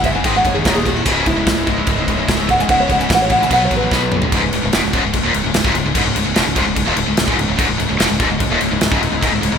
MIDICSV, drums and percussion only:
0, 0, Header, 1, 2, 480
1, 0, Start_track
1, 0, Key_signature, 4, "minor"
1, 0, Tempo, 407886
1, 1246, Time_signature, 4, 2, 24, 8
1, 11276, End_track
2, 0, Start_track
2, 0, Title_t, "Drums"
2, 45, Note_on_c, 9, 36, 93
2, 46, Note_on_c, 9, 49, 69
2, 163, Note_off_c, 9, 36, 0
2, 164, Note_off_c, 9, 49, 0
2, 284, Note_on_c, 9, 49, 84
2, 286, Note_on_c, 9, 36, 114
2, 402, Note_off_c, 9, 49, 0
2, 404, Note_off_c, 9, 36, 0
2, 526, Note_on_c, 9, 36, 86
2, 530, Note_on_c, 9, 49, 64
2, 644, Note_off_c, 9, 36, 0
2, 648, Note_off_c, 9, 49, 0
2, 768, Note_on_c, 9, 36, 117
2, 770, Note_on_c, 9, 49, 87
2, 778, Note_on_c, 9, 38, 117
2, 886, Note_off_c, 9, 36, 0
2, 888, Note_off_c, 9, 49, 0
2, 896, Note_off_c, 9, 38, 0
2, 1007, Note_on_c, 9, 36, 84
2, 1012, Note_on_c, 9, 49, 62
2, 1125, Note_off_c, 9, 36, 0
2, 1130, Note_off_c, 9, 49, 0
2, 1247, Note_on_c, 9, 36, 117
2, 1251, Note_on_c, 9, 49, 77
2, 1364, Note_off_c, 9, 36, 0
2, 1369, Note_off_c, 9, 49, 0
2, 1482, Note_on_c, 9, 49, 62
2, 1487, Note_on_c, 9, 36, 95
2, 1600, Note_off_c, 9, 49, 0
2, 1605, Note_off_c, 9, 36, 0
2, 1726, Note_on_c, 9, 49, 78
2, 1728, Note_on_c, 9, 36, 118
2, 1734, Note_on_c, 9, 38, 120
2, 1844, Note_off_c, 9, 49, 0
2, 1845, Note_off_c, 9, 36, 0
2, 1852, Note_off_c, 9, 38, 0
2, 1965, Note_on_c, 9, 49, 62
2, 1967, Note_on_c, 9, 36, 97
2, 2082, Note_off_c, 9, 49, 0
2, 2084, Note_off_c, 9, 36, 0
2, 2196, Note_on_c, 9, 49, 74
2, 2205, Note_on_c, 9, 36, 110
2, 2314, Note_off_c, 9, 49, 0
2, 2322, Note_off_c, 9, 36, 0
2, 2448, Note_on_c, 9, 36, 90
2, 2449, Note_on_c, 9, 49, 58
2, 2566, Note_off_c, 9, 36, 0
2, 2567, Note_off_c, 9, 49, 0
2, 2689, Note_on_c, 9, 36, 118
2, 2692, Note_on_c, 9, 49, 84
2, 2700, Note_on_c, 9, 38, 122
2, 2807, Note_off_c, 9, 36, 0
2, 2810, Note_off_c, 9, 49, 0
2, 2818, Note_off_c, 9, 38, 0
2, 2929, Note_on_c, 9, 36, 86
2, 2930, Note_on_c, 9, 49, 62
2, 3047, Note_off_c, 9, 36, 0
2, 3047, Note_off_c, 9, 49, 0
2, 3164, Note_on_c, 9, 49, 84
2, 3167, Note_on_c, 9, 36, 115
2, 3282, Note_off_c, 9, 49, 0
2, 3284, Note_off_c, 9, 36, 0
2, 3406, Note_on_c, 9, 49, 64
2, 3408, Note_on_c, 9, 36, 92
2, 3524, Note_off_c, 9, 49, 0
2, 3526, Note_off_c, 9, 36, 0
2, 3649, Note_on_c, 9, 36, 121
2, 3650, Note_on_c, 9, 49, 93
2, 3658, Note_on_c, 9, 38, 115
2, 3766, Note_off_c, 9, 36, 0
2, 3768, Note_off_c, 9, 49, 0
2, 3776, Note_off_c, 9, 38, 0
2, 3880, Note_on_c, 9, 49, 70
2, 3886, Note_on_c, 9, 36, 92
2, 3997, Note_off_c, 9, 49, 0
2, 4003, Note_off_c, 9, 36, 0
2, 4127, Note_on_c, 9, 36, 108
2, 4129, Note_on_c, 9, 49, 87
2, 4245, Note_off_c, 9, 36, 0
2, 4246, Note_off_c, 9, 49, 0
2, 4364, Note_on_c, 9, 49, 64
2, 4367, Note_on_c, 9, 36, 88
2, 4482, Note_off_c, 9, 49, 0
2, 4484, Note_off_c, 9, 36, 0
2, 4607, Note_on_c, 9, 36, 119
2, 4614, Note_on_c, 9, 38, 68
2, 4725, Note_off_c, 9, 36, 0
2, 4732, Note_off_c, 9, 38, 0
2, 4844, Note_on_c, 9, 45, 94
2, 4962, Note_off_c, 9, 45, 0
2, 4964, Note_on_c, 9, 43, 99
2, 5082, Note_off_c, 9, 43, 0
2, 5084, Note_on_c, 9, 49, 86
2, 5087, Note_on_c, 9, 36, 103
2, 5201, Note_off_c, 9, 49, 0
2, 5205, Note_off_c, 9, 36, 0
2, 5326, Note_on_c, 9, 49, 65
2, 5444, Note_off_c, 9, 49, 0
2, 5562, Note_on_c, 9, 49, 86
2, 5570, Note_on_c, 9, 38, 124
2, 5679, Note_off_c, 9, 49, 0
2, 5688, Note_off_c, 9, 38, 0
2, 5807, Note_on_c, 9, 36, 113
2, 5807, Note_on_c, 9, 49, 66
2, 5924, Note_off_c, 9, 36, 0
2, 5924, Note_off_c, 9, 49, 0
2, 6042, Note_on_c, 9, 49, 79
2, 6046, Note_on_c, 9, 36, 93
2, 6160, Note_off_c, 9, 49, 0
2, 6164, Note_off_c, 9, 36, 0
2, 6286, Note_on_c, 9, 49, 66
2, 6404, Note_off_c, 9, 49, 0
2, 6521, Note_on_c, 9, 49, 92
2, 6529, Note_on_c, 9, 38, 120
2, 6638, Note_off_c, 9, 49, 0
2, 6645, Note_on_c, 9, 36, 118
2, 6647, Note_off_c, 9, 38, 0
2, 6762, Note_off_c, 9, 36, 0
2, 6765, Note_on_c, 9, 49, 62
2, 6883, Note_off_c, 9, 49, 0
2, 7002, Note_on_c, 9, 36, 115
2, 7004, Note_on_c, 9, 49, 89
2, 7120, Note_off_c, 9, 36, 0
2, 7121, Note_off_c, 9, 49, 0
2, 7246, Note_on_c, 9, 49, 73
2, 7363, Note_off_c, 9, 49, 0
2, 7480, Note_on_c, 9, 49, 93
2, 7488, Note_on_c, 9, 38, 116
2, 7598, Note_off_c, 9, 49, 0
2, 7606, Note_off_c, 9, 38, 0
2, 7719, Note_on_c, 9, 49, 74
2, 7721, Note_on_c, 9, 36, 112
2, 7837, Note_off_c, 9, 49, 0
2, 7839, Note_off_c, 9, 36, 0
2, 7958, Note_on_c, 9, 49, 87
2, 7960, Note_on_c, 9, 36, 89
2, 8076, Note_off_c, 9, 49, 0
2, 8078, Note_off_c, 9, 36, 0
2, 8196, Note_on_c, 9, 49, 72
2, 8314, Note_off_c, 9, 49, 0
2, 8438, Note_on_c, 9, 49, 101
2, 8446, Note_on_c, 9, 38, 125
2, 8555, Note_off_c, 9, 49, 0
2, 8564, Note_off_c, 9, 38, 0
2, 8564, Note_on_c, 9, 36, 116
2, 8682, Note_off_c, 9, 36, 0
2, 8695, Note_on_c, 9, 49, 68
2, 8813, Note_off_c, 9, 49, 0
2, 8929, Note_on_c, 9, 36, 110
2, 8933, Note_on_c, 9, 49, 88
2, 9046, Note_off_c, 9, 36, 0
2, 9051, Note_off_c, 9, 49, 0
2, 9174, Note_on_c, 9, 49, 68
2, 9291, Note_off_c, 9, 49, 0
2, 9412, Note_on_c, 9, 49, 94
2, 9420, Note_on_c, 9, 38, 118
2, 9530, Note_off_c, 9, 49, 0
2, 9538, Note_off_c, 9, 38, 0
2, 9646, Note_on_c, 9, 49, 65
2, 9648, Note_on_c, 9, 36, 116
2, 9764, Note_off_c, 9, 49, 0
2, 9766, Note_off_c, 9, 36, 0
2, 9886, Note_on_c, 9, 49, 81
2, 9889, Note_on_c, 9, 36, 93
2, 10004, Note_off_c, 9, 49, 0
2, 10007, Note_off_c, 9, 36, 0
2, 10128, Note_on_c, 9, 49, 64
2, 10245, Note_off_c, 9, 49, 0
2, 10366, Note_on_c, 9, 49, 92
2, 10374, Note_on_c, 9, 38, 122
2, 10484, Note_off_c, 9, 49, 0
2, 10492, Note_off_c, 9, 38, 0
2, 10493, Note_on_c, 9, 36, 123
2, 10610, Note_off_c, 9, 36, 0
2, 10622, Note_on_c, 9, 49, 62
2, 10739, Note_off_c, 9, 49, 0
2, 10857, Note_on_c, 9, 36, 109
2, 10865, Note_on_c, 9, 49, 83
2, 10974, Note_off_c, 9, 36, 0
2, 10983, Note_off_c, 9, 49, 0
2, 11097, Note_on_c, 9, 49, 73
2, 11214, Note_off_c, 9, 49, 0
2, 11276, End_track
0, 0, End_of_file